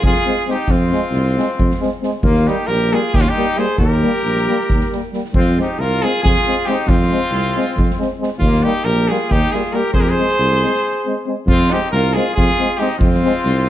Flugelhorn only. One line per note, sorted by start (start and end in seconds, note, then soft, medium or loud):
0.05 0.45 F4 medium
0.51 0.72 D#4 medium
0.71 2.04 C4 medium
2.24 2.50 A#3 medium
2.48 2.70 D#4 medium
2.69 2.96 G4 medium
2.95 3.17 F4 medium
3.16 3.22 D#4 medium
3.21 3.33 C#4 medium
3.32 3.60 D#4 medium
3.58 3.79 G#4 medium
3.79 5.09 G4 medium
5.35 5.57 C4 medium
5.62 5.83 D#4 medium
5.82 6.06 F4 medium
6.06 6.25 F4 medium
6.27 6.72 F4 medium
6.71 6.91 D#4 medium
6.90 8.22 C4 medium
8.44 8.67 A#3 medium
8.65 8.88 D#4 medium
8.86 9.13 G4 medium
9.12 9.34 F4 medium
9.32 9.56 D#4 medium
9.55 9.78 F4 medium
9.76 9.94 G4 medium
9.94 10.05 G#4 medium
10.03 10.10 G4 medium
10.09 11.27 G#4 medium
11.49 11.72 C4 medium
11.70 11.92 D#4 medium
11.94 12.16 F4 medium
12.16 12.36 F4 medium
12.37 12.82 F4 medium
12.80 12.99 D#4 medium
12.99 13.69 C4 medium